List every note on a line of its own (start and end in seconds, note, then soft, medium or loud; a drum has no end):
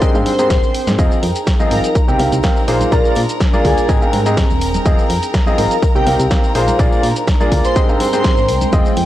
0.00 0.13 G#2 medium
0.00 0.13 C4 medium
0.00 1.38 C4 medium
0.00 0.41 D4 medium
0.00 0.13 G4 medium
0.00 0.13 G#4 medium
0.00 0.41 A#4 medium
0.00 0.13 D#5 loud
0.00 kick loud
0.00 closed hi-hat medium
0.00 tambourine soft
0.00 shaker medium
0.15 0.30 G#2 medium
0.15 0.22 G#2 loud
0.15 0.30 C4 medium
0.15 0.30 G4 medium
0.15 0.30 G#4 medium
0.15 0.30 F5 medium
0.15 tambourine soft
0.15 shaker soft
0.21 1.38 G5 medium
0.26 0.94 C5 medium
0.26 open hi-hat loud
0.26 tambourine medium
0.26 high conga medium
0.39 0.54 G#2 medium
0.39 0.54 C4 medium
0.39 0.54 G4 medium
0.39 0.54 G#4 medium
0.39 0.54 C5 medium
0.39 closed hi-hat medium
0.39 tambourine soft
0.39 shaker medium
0.46 1.95 G#4 medium
0.50 0.59 D#1 medium
0.50 kick loud
0.50 snare loud
0.50 closed hi-hat medium
0.50 tambourine soft
0.50 shaker medium
0.63 tambourine soft
0.63 shaker soft
0.74 open hi-hat medium
0.74 tambourine medium
0.87 0.95 G#2 medium
0.87 snare medium
0.87 closed hi-hat medium
0.87 tambourine soft
0.87 high conga medium
0.87 shaker medium
0.98 1.07 F1 medium
0.98 1.15 F3 loud
0.98 1.15 C4 medium
0.98 2.68 D#4 medium
0.98 1.15 F4 medium
0.98 1.15 G#4 medium
0.98 8.74 A#4 medium
0.98 1.15 D#5 loud
0.98 8.74 A#5 medium
0.98 kick loud
0.98 closed hi-hat medium
0.98 tambourine medium
0.98 shaker medium
1.11 tambourine soft
1.11 shaker soft
1.23 1.31 F2 medium
1.23 open hi-hat loud
1.23 tambourine medium
1.35 closed hi-hat medium
1.35 tambourine soft
1.35 shaker medium
1.42 2.25 F5 medium
1.47 kick loud
1.47 snare loud
1.47 closed hi-hat medium
1.47 tambourine medium
1.47 shaker medium
1.59 1.85 F3 medium
1.59 1.85 C4 medium
1.59 1.85 F4 medium
1.59 1.85 G#4 medium
1.59 1.85 D#5 medium
1.59 tambourine soft
1.59 high conga loud
1.59 shaker soft
1.71 1.80 G#1 loud
1.71 1.90 A#4 medium
1.71 open hi-hat medium
1.71 tambourine medium
1.84 closed hi-hat medium
1.84 tambourine soft
1.84 shaker medium
1.95 kick loud
1.95 closed hi-hat medium
1.95 tambourine soft
1.95 shaker medium
2.08 2.16 C2 medium
2.08 2.17 C3 medium
2.08 2.17 C4 medium
2.08 2.17 G4 medium
2.08 2.17 A#4 medium
2.08 2.17 G5 loud
2.08 shaker soft
2.19 2.28 C2 medium
2.19 2.36 C3 medium
2.19 2.36 C4 medium
2.19 2.36 G4 medium
2.19 2.36 A#4 medium
2.19 2.36 F5 medium
2.19 open hi-hat loud
2.19 tambourine medium
2.19 high conga medium
2.28 2.40 C2 loud
2.28 3.16 C5 medium
2.28 3.16 A#5 medium
2.28 closed hi-hat medium
2.28 tambourine soft
2.33 shaker medium
2.43 2.60 C4 medium
2.43 2.60 G4 medium
2.43 2.60 A#4 medium
2.43 2.60 F5 medium
2.43 kick loud
2.43 snare loud
2.43 closed hi-hat medium
2.43 tambourine medium
2.43 shaker medium
2.56 tambourine soft
2.56 shaker soft
2.68 2.84 A#1 medium
2.68 2.89 A#2 medium
2.68 2.89 A#3 medium
2.68 4.28 D4 medium
2.68 2.89 F4 medium
2.68 2.89 G#4 medium
2.68 2.89 C5 medium
2.68 open hi-hat loud
2.68 tambourine loud
2.81 closed hi-hat medium
2.81 tambourine soft
2.81 high conga medium
2.81 shaker medium
2.92 3.01 A#1 medium
2.92 3.18 A#2 loud
2.92 3.18 A#3 medium
2.92 3.18 F4 medium
2.92 3.18 G#4 medium
2.92 3.11 A#4 medium
2.92 3.18 D5 loud
2.92 kick loud
2.92 closed hi-hat medium
2.92 tambourine medium
2.92 shaker medium
3.04 tambourine soft
3.04 shaker soft
3.15 3.25 A#2 medium
3.15 open hi-hat loud
3.15 tambourine medium
3.23 4.28 A#4 medium
3.23 3.89 G#5 medium
3.29 closed hi-hat medium
3.29 tambourine soft
3.29 shaker medium
3.40 kick loud
3.40 snare loud
3.40 closed hi-hat medium
3.40 tambourine medium
3.40 shaker medium
3.53 3.86 A#2 medium
3.53 3.86 A#3 medium
3.53 3.86 F4 medium
3.53 3.86 G#4 medium
3.53 3.86 D5 loud
3.53 tambourine soft
3.53 high conga loud
3.53 shaker soft
3.65 3.73 D2 loud
3.65 3.94 G#4 medium
3.65 kick medium
3.65 open hi-hat loud
3.65 tambourine medium
3.78 closed hi-hat medium
3.78 tambourine soft
3.78 shaker medium
3.89 3.97 G#1 loud
3.89 4.00 G#2 medium
3.89 4.00 C4 medium
3.89 5.25 C4 medium
3.89 4.00 G4 medium
3.89 4.00 G#4 medium
3.89 4.00 D#5 loud
3.89 kick loud
3.89 closed hi-hat medium
3.89 tambourine medium
3.89 shaker medium
4.02 4.17 G#2 medium
4.02 4.17 C4 medium
4.02 4.17 G4 medium
4.02 4.17 G#4 medium
4.02 4.17 F5 medium
4.02 shaker soft
4.13 4.43 G#2 medium
4.13 open hi-hat loud
4.13 tambourine medium
4.13 high conga medium
4.26 4.41 G#2 medium
4.26 4.41 C4 medium
4.26 4.41 G4 medium
4.26 4.41 G#4 medium
4.26 4.41 D#5 medium
4.26 closed hi-hat medium
4.26 tambourine soft
4.26 shaker medium
4.33 5.82 G#4 medium
4.33 5.25 G5 medium
4.37 kick loud
4.37 snare loud
4.37 closed hi-hat medium
4.37 tambourine medium
4.37 shaker medium
4.50 4.79 D#1 medium
4.50 tambourine soft
4.50 shaker soft
4.61 open hi-hat loud
4.61 tambourine loud
4.74 closed hi-hat medium
4.74 tambourine soft
4.74 high conga loud
4.74 shaker medium
4.86 4.94 F1 medium
4.86 5.02 F3 medium
4.86 5.02 C4 medium
4.86 6.55 D#4 medium
4.86 5.02 F4 medium
4.86 5.02 G#4 medium
4.86 5.02 D#5 loud
4.86 kick loud
4.86 closed hi-hat medium
4.86 tambourine medium
4.86 shaker medium
4.99 tambourine soft
4.99 shaker soft
5.10 5.18 F2 medium
5.10 open hi-hat loud
5.10 tambourine loud
5.23 closed hi-hat medium
5.23 tambourine soft
5.23 shaker medium
5.28 6.12 F5 medium
5.34 kick loud
5.34 snare loud
5.34 closed hi-hat medium
5.34 tambourine medium
5.34 shaker medium
5.46 5.72 F3 medium
5.46 5.72 C4 medium
5.46 5.72 F4 medium
5.46 5.72 G#4 medium
5.46 5.72 D#5 loud
5.46 tambourine soft
5.46 high conga medium
5.46 shaker soft
5.58 5.67 G#1 medium
5.58 5.77 A#4 medium
5.58 open hi-hat loud
5.58 tambourine medium
5.71 closed hi-hat medium
5.71 tambourine soft
5.71 shaker medium
5.82 kick loud
5.82 closed hi-hat medium
5.82 tambourine medium
5.82 shaker medium
5.95 6.03 C2 medium
5.95 6.04 C3 medium
5.95 6.04 C4 medium
5.95 6.04 G4 medium
5.95 6.13 G4 loud
5.95 6.04 A#4 medium
5.95 6.04 G5 loud
5.95 shaker soft
6.05 6.15 C2 medium
6.05 6.23 C3 medium
6.05 6.23 C4 medium
6.05 6.23 G4 medium
6.05 6.23 A#4 medium
6.05 7.03 C5 medium
6.05 6.23 F5 medium
6.05 open hi-hat loud
6.05 tambourine medium
6.05 high conga medium
6.16 6.27 C2 loud
6.16 7.03 A#5 medium
6.16 closed hi-hat medium
6.16 tambourine soft
6.20 shaker medium
6.31 6.47 C4 medium
6.31 6.47 G4 medium
6.31 6.47 A#4 medium
6.31 6.47 F5 medium
6.31 kick loud
6.31 snare loud
6.31 closed hi-hat medium
6.31 tambourine medium
6.31 shaker medium
6.43 tambourine soft
6.43 shaker soft
6.55 6.71 A#1 medium
6.55 6.76 A#2 medium
6.55 6.76 A#3 medium
6.55 8.15 D4 medium
6.55 6.76 F4 medium
6.55 6.76 G#4 medium
6.55 6.76 C5 medium
6.55 open hi-hat medium
6.55 tambourine loud
6.68 closed hi-hat medium
6.68 tambourine soft
6.68 high conga medium
6.68 shaker medium
6.79 6.88 A#1 medium
6.79 7.05 A#2 loud
6.79 7.05 A#3 medium
6.79 7.05 F4 medium
6.79 7.05 G#4 medium
6.79 7.05 D5 loud
6.79 kick loud
6.79 closed hi-hat medium
6.79 tambourine medium
6.79 shaker medium
6.86 8.15 A#4 medium
6.92 tambourine soft
6.92 shaker soft
7.03 7.12 A#2 medium
7.03 open hi-hat loud
7.03 tambourine medium
7.10 7.76 G#5 medium
7.16 closed hi-hat soft
7.16 tambourine soft
7.16 shaker medium
7.28 kick loud
7.28 snare loud
7.28 closed hi-hat medium
7.28 tambourine medium
7.28 shaker soft
7.40 7.73 A#2 medium
7.40 7.73 A#3 medium
7.40 7.73 F4 medium
7.40 7.73 G#4 medium
7.40 7.73 D5 loud
7.40 tambourine soft
7.40 high conga medium
7.40 shaker soft
7.52 7.60 D2 loud
7.52 kick medium
7.52 open hi-hat medium
7.52 tambourine medium
7.64 7.81 C5 medium
7.64 closed hi-hat soft
7.64 tambourine soft
7.64 shaker medium
7.76 7.87 G#2 medium
7.76 9.05 C4 medium
7.76 7.87 C4 medium
7.76 7.87 G4 medium
7.76 7.87 G#4 medium
7.76 7.87 D#5 loud
7.76 kick loud
7.76 closed hi-hat medium
7.76 tambourine medium
7.76 shaker medium
7.89 8.04 G#2 medium
7.89 8.04 C4 medium
7.89 8.04 G4 medium
7.89 8.04 G#4 medium
7.89 8.04 F5 medium
7.89 shaker soft
8.00 8.68 C5 medium
8.00 open hi-hat loud
8.00 tambourine loud
8.00 high conga medium
8.11 8.28 G#2 medium
8.11 8.28 C4 medium
8.11 8.28 G4 medium
8.11 8.28 G#4 medium
8.11 8.28 C5 medium
8.11 9.05 G5 medium
8.11 closed hi-hat soft
8.11 tambourine soft
8.11 shaker medium
8.20 9.05 G#3 medium
8.24 kick loud
8.24 snare loud
8.24 closed hi-hat medium
8.24 tambourine soft
8.24 shaker medium
8.37 8.50 G#1 medium
8.37 tambourine soft
8.37 shaker soft
8.49 8.65 C2 medium
8.49 open hi-hat medium
8.49 tambourine loud
8.61 closed hi-hat soft
8.61 tambourine soft
8.61 high conga medium
8.61 shaker medium
8.72 8.81 F1 medium
8.72 8.89 F3 medium
8.72 8.89 C4 medium
8.72 9.05 D#4 medium
8.72 8.89 F4 medium
8.72 8.89 G#4 medium
8.72 9.05 G#4 medium
8.72 8.89 D#5 loud
8.72 9.05 G5 medium
8.72 kick loud
8.72 closed hi-hat medium
8.72 tambourine soft
8.72 shaker medium
8.85 tambourine soft
8.85 shaker soft
8.96 9.05 F2 medium
8.96 open hi-hat loud
8.96 tambourine medium